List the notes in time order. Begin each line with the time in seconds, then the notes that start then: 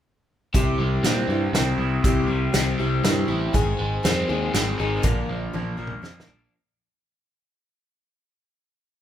0.54 C2 C3 G3 C4 E4 G4, kick, closed hi-hat
0.79 C2 G3
1.03 A#2 G3 C4 E4 G4, snare, closed hi-hat
1.28 G2 G3 C4 E4 G4
1.53 C2 G3 C4 E4 G4, snare, closed hi-hat
1.78 C2 E4
2.04 C2 C3 G3 C4 E4 G4, kick, closed hi-hat
2.27 C2 G3
2.53 C2 G3 C4 E4 G4, snare, closed hi-hat
2.78 C2 G3 C4 E4 G4
3.03 G2 G3 C4 E4 G4, snare, closed hi-hat
3.27 A1 C4 E4 G4
3.53 G#1 G#2 D#3 G#3 C4 D#4 G#4, kick, closed hi-hat
3.79 G#1 G#3
4.03 F2 G#3 C4 D#4 G#4, snare, closed hi-hat
4.28 D#2 G#3 C4 D#4 G#4
4.54 G#1 G#3 C4 D#4 G#4, snare, closed hi-hat
4.79 G#1 G#3 C4 D#4 G#4
5.02 A#1 A#2 D3 F3 A#3 D4 A#4, kick, closed hi-hat
5.29 A#1 F3
5.53 A#1 F3 A#3 D4 A#4, high tom
5.77 A#1 F3 A#3 D4 A#4
5.87 mid tom
6.02 F2 F3 A#3 D4 A#4, snare
6.20 snare
6.27 A#1 D4